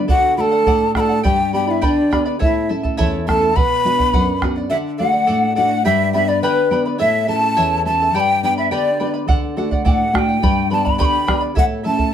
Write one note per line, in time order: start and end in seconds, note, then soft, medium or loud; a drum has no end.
0.08 0.65 D3 medium
0.08 0.35 F#4 medium
0.08 0.36 A4 medium
0.08 0.37 D5 medium
0.08 0.38 F#5 medium
0.08 0.36 F#5 loud
0.08 bombo low medium
0.37 0.84 A3 medium
0.37 0.84 D4 soft
0.37 0.85 F#4 medium
0.37 0.52 A4 medium
0.37 0.92 A4 medium
0.37 0.52 D5 medium
0.37 0.50 F#5 medium
0.37 0.91 A5 loud
0.37 0.42 B5 medium
0.52 0.66 D5 soft
0.52 0.66 F#5 medium
0.66 1.23 A2 medium
0.66 0.94 A4 medium
0.66 0.95 D5 medium
0.66 0.96 F#5 loud
0.66 bombo low medium
0.95 1.19 A3 soft
0.95 1.19 D4 soft
0.95 1.19 F#4 medium
0.95 1.10 A4 medium
0.95 1.22 A4 medium
0.95 1.10 D5 medium
0.95 1.08 F#5 medium
0.95 1.01 B5 medium
0.95 bombo rim soft
0.95 bombo low soft
1.00 1.23 A5 medium
1.09 1.23 D5 soft
1.09 1.24 F#5 medium
1.23 1.81 G2 medium
1.23 1.53 G4 medium
1.23 1.52 G4 medium
1.23 1.52 B4 medium
1.23 1.53 D5 medium
1.23 1.52 G5 medium
1.23 1.51 G5 loud
1.23 1.53 B5 medium
1.23 bombo low medium
1.53 2.00 B3 soft
1.53 2.00 D4 soft
1.53 2.00 G4 medium
1.53 1.69 G4 medium
1.53 1.68 B4 medium
1.53 1.67 D5 medium
1.53 1.68 G5 medium
1.53 1.72 G5 medium
1.53 1.66 B5 medium
1.67 1.84 E4 medium
1.67 1.81 B4 soft
1.67 1.81 D5 medium
1.67 1.86 E5 medium
1.67 1.82 B5 medium
1.81 2.39 D3 medium
1.81 2.26 D4 medium
1.81 2.11 G4 medium
1.81 2.10 B4 medium
1.81 2.11 D5 loud
1.81 2.27 D5 medium
1.81 2.10 G5 medium
1.81 2.11 B5 loud
1.81 bombo low medium
2.11 2.35 B3 medium
2.11 2.35 D4 soft
2.11 2.35 G4 medium
2.11 2.26 B4 medium
2.11 2.25 D5 medium
2.11 2.25 G5 medium
2.11 2.24 B5 medium
2.11 bombo rim soft
2.11 bombo low soft
2.25 2.40 B4 soft
2.25 2.40 D5 medium
2.25 2.40 B5 medium
2.39 2.97 A2 medium
2.39 2.68 E4 medium
2.39 2.69 A4 medium
2.39 2.69 C#5 medium
2.39 2.68 E5 medium
2.39 2.69 A5 medium
2.39 bombo low medium
2.69 3.16 A3 soft
2.69 3.16 C#4 soft
2.69 2.84 E4 medium
2.69 3.16 E4 medium
2.69 2.83 A4 medium
2.69 2.83 E5 medium
2.69 2.82 A5 medium
2.83 2.97 E4 medium
2.83 2.97 A4 medium
2.83 2.97 A5 medium
2.83 bombo low medium
2.97 3.54 E2 medium
2.97 3.27 E4 loud
2.97 3.26 A4 loud
2.97 3.27 C#5 loud
2.97 3.25 E5 loud
2.97 3.27 A5 loud
2.97 bombo low medium
3.27 3.50 A3 medium
3.27 3.50 C#4 soft
3.27 3.42 E4 medium
3.27 3.51 E4 medium
3.27 3.40 A4 medium
3.27 3.58 A4 medium
3.27 3.41 E5 medium
3.27 3.58 A5 loud
3.27 3.40 A5 medium
3.27 bombo rim soft
3.27 bombo low soft
3.41 3.55 E4 soft
3.41 3.56 A4 soft
3.41 3.56 A5 medium
3.56 4.12 B2 medium
3.56 3.84 B4 medium
3.56 4.42 B4 medium
3.56 3.84 D5 medium
3.56 3.85 F#5 medium
3.56 4.42 B5 loud
3.56 bombo low medium
3.85 4.31 B3 medium
3.85 4.31 D4 soft
3.85 4.31 F#4 medium
3.85 3.99 B4 medium
3.85 3.99 D5 medium
3.85 3.97 F#5 medium
3.99 4.12 D5 soft
3.99 4.13 F#5 medium
3.99 bombo low medium
4.13 4.69 F#2 medium
4.13 4.42 B4 medium
4.13 4.42 D5 medium
4.13 4.42 F#5 loud
4.13 bombo low medium
4.42 4.65 B3 medium
4.42 4.66 D4 soft
4.42 4.66 F#4 medium
4.42 4.57 B4 medium
4.42 4.56 D5 medium
4.42 4.55 F#5 medium
4.42 bombo rim soft
4.42 bombo low medium
4.56 4.69 D5 medium
4.56 4.70 F#5 medium
4.70 5.27 D3 medium
4.70 4.97 A4 medium
4.70 4.98 D5 medium
4.70 4.76 E5 medium
4.70 4.98 F#5 medium
4.98 5.46 A3 medium
4.98 5.46 D4 soft
4.98 5.46 F#4 medium
4.98 5.13 A4 medium
4.98 5.12 D5 medium
4.98 5.52 F#5 medium
4.98 5.53 F#5 medium
4.98 5.11 F#5 medium
5.12 5.26 D5 soft
5.12 5.27 F#5 medium
5.27 5.84 A2 medium
5.27 5.54 A4 medium
5.27 5.55 D5 loud
5.27 5.55 F#5 medium
5.55 5.80 A3 medium
5.55 5.80 D4 medium
5.55 5.80 F#4 medium
5.55 5.70 A4 medium
5.55 5.69 D5 medium
5.55 5.83 F#5 medium
5.55 5.83 F#5 loud
5.55 5.69 F#5 medium
5.70 5.84 D5 soft
5.70 5.84 F#5 soft
5.84 6.41 G2 medium
5.84 6.14 G4 medium
5.84 6.12 B4 medium
5.84 6.13 D5 medium
5.84 6.11 E5 medium
5.84 6.12 E5 loud
5.84 6.12 G5 medium
5.84 6.13 B5 medium
6.13 6.60 B3 medium
6.13 6.60 D4 medium
6.13 6.60 G4 medium
6.13 6.28 B4 medium
6.13 6.28 D5 medium
6.13 6.29 E5 medium
6.13 6.30 E5 loud
6.13 6.28 G5 medium
6.13 6.27 B5 medium
6.28 6.42 B4 soft
6.28 6.41 D5 medium
6.28 6.42 D5 soft
6.28 6.43 B5 medium
6.42 6.98 D3 medium
6.42 6.71 G4 medium
6.42 6.82 B4 medium
6.42 6.70 B4 medium
6.42 6.71 D5 medium
6.42 6.70 G5 loud
6.42 6.71 B5 loud
6.71 6.94 B3 medium
6.71 6.94 D4 soft
6.71 6.94 G4 medium
6.71 6.86 B4 medium
6.71 6.85 D5 medium
6.71 6.85 G5 medium
6.71 6.84 B5 medium
6.86 6.98 B4 soft
6.86 6.99 D5 soft
6.86 6.99 B5 medium
6.98 7.56 A2 medium
6.98 7.27 E4 medium
6.98 7.27 A4 loud
6.98 7.28 C#5 medium
6.98 7.26 E5 medium
6.98 7.27 E5 loud
6.98 7.28 A5 medium
7.27 7.74 C#4 medium
7.27 7.42 E4 medium
7.27 7.74 E4 medium
7.27 7.41 A4 medium
7.27 7.74 A4 medium
7.27 7.42 E5 medium
7.27 7.81 A5 loud
7.27 7.40 A5 medium
7.27 7.82 A5 loud
7.41 7.56 E4 soft
7.41 7.56 A4 medium
7.41 7.56 A5 medium
7.57 8.13 E2 medium
7.57 7.85 E4 loud
7.57 7.86 A4 medium
7.57 7.85 C#5 medium
7.57 7.85 E5 medium
7.57 7.86 A5 loud
7.85 8.08 C#4 medium
7.85 8.09 E4 soft
7.85 8.00 E4 medium
7.85 8.09 A4 medium
7.85 8.00 A4 medium
7.85 8.00 E5 medium
7.85 8.15 A5 loud
7.85 8.15 A5 medium
7.85 7.99 A5 medium
8.00 8.15 E4 soft
8.00 8.15 A4 soft
8.00 8.14 A5 medium
8.13 8.69 G2 medium
8.13 8.43 G4 medium
8.13 8.43 B4 medium
8.13 8.43 D5 medium
8.13 8.42 G5 medium
8.13 8.21 A5 loud
8.13 8.43 B5 medium
8.20 8.43 G5 loud
8.43 8.89 B3 medium
8.43 8.89 D4 soft
8.43 8.89 G4 medium
8.43 8.58 B4 medium
8.43 8.57 D5 medium
8.43 8.56 G5 medium
8.43 8.57 G5 medium
8.43 8.56 B5 medium
8.58 8.71 B4 soft
8.58 8.71 D5 soft
8.58 8.71 E5 medium
8.58 8.71 B5 medium
8.71 9.27 D3 medium
8.71 9.00 G4 medium
8.71 8.99 B4 medium
8.71 9.11 D5 medium
8.71 9.12 D5 medium
8.71 8.99 D5 medium
8.71 8.98 G5 medium
8.71 9.00 B5 medium
9.00 9.23 B3 soft
9.00 9.23 D4 soft
9.00 9.23 G4 medium
9.00 9.14 B4 medium
9.00 9.14 D5 medium
9.00 9.14 G5 medium
9.00 9.12 B5 medium
9.14 9.29 B4 soft
9.14 9.27 D5 soft
9.14 9.28 B5 soft
9.28 9.84 D3 medium
9.28 9.56 A4 medium
9.28 9.56 D5 medium
9.28 9.57 F#5 medium
9.28 bombo low medium
9.57 10.02 A3 medium
9.57 10.02 D4 soft
9.57 10.03 F#4 medium
9.57 9.71 A4 medium
9.57 9.71 D5 medium
9.57 9.70 F#5 medium
9.71 9.84 D5 soft
9.71 9.85 F#5 medium
9.71 bombo low medium
9.85 10.40 A2 medium
9.85 10.12 A4 medium
9.85 10.13 D5 medium
9.85 10.13 F#5 medium
9.85 10.17 F#5 medium
9.85 9.92 G5 medium
9.85 bombo low medium
9.91 10.17 F#5 medium
10.13 10.36 A3 medium
10.13 10.36 D4 soft
10.13 10.37 F#4 medium
10.13 10.28 A4 medium
10.13 10.28 D5 medium
10.13 10.27 F#5 medium
10.13 10.71 G5 medium
10.13 10.20 A5 medium
10.13 bombo rim medium
10.13 bombo low medium
10.19 10.72 G5 medium
10.28 10.42 D5 soft
10.28 10.42 F#5 medium
10.42 10.98 G2 medium
10.42 10.71 G4 medium
10.42 10.69 B4 medium
10.42 10.70 D5 medium
10.42 10.69 G5 medium
10.42 10.70 B5 medium
10.42 bombo low medium
10.70 11.16 B3 medium
10.70 11.17 D4 soft
10.70 11.17 G4 medium
10.70 10.85 B4 medium
10.70 10.84 D5 medium
10.70 10.85 G5 medium
10.70 10.87 A5 medium
10.70 10.88 A5 medium
10.70 10.84 B5 medium
10.85 10.98 B4 soft
10.85 10.98 D5 medium
10.85 10.99 B5 medium
10.85 11.00 B5 medium
10.85 bombo low medium
10.98 11.55 D3 medium
10.98 11.27 G4 loud
10.98 11.26 B4 medium
10.98 11.26 D5 medium
10.98 11.25 G5 medium
10.98 11.26 B5 loud
10.98 11.40 B5 medium
10.98 11.06 C#6 medium
10.98 bombo low medium
11.05 11.40 B5 loud
11.27 11.51 B3 medium
11.27 11.51 D4 soft
11.27 11.51 G4 medium
11.27 11.41 B4 medium
11.27 11.41 D5 medium
11.27 11.41 G5 medium
11.27 11.40 B5 medium
11.27 bombo rim medium
11.27 bombo low medium
11.41 11.55 B4 soft
11.41 11.56 D5 soft
11.41 11.56 B5 medium
11.55 12.12 A2 medium
11.55 11.83 E4 medium
11.55 11.83 A4 medium
11.55 11.84 C#5 medium
11.55 11.82 E5 medium
11.55 11.64 F#5 medium
11.55 11.65 F#5 loud
11.55 11.84 A5 medium
11.55 bombo low medium
11.83 12.14 A3 medium
11.83 12.14 C#4 medium
11.83 11.98 E4 medium
11.83 12.14 E4 medium
11.83 11.97 A4 medium
11.83 11.98 E5 medium
11.83 11.96 A5 medium
11.83 12.14 A5 medium
11.83 12.14 A5 loud
11.97 12.12 E4 soft
11.97 12.12 A4 soft
11.97 12.12 A5 medium
11.97 bombo low medium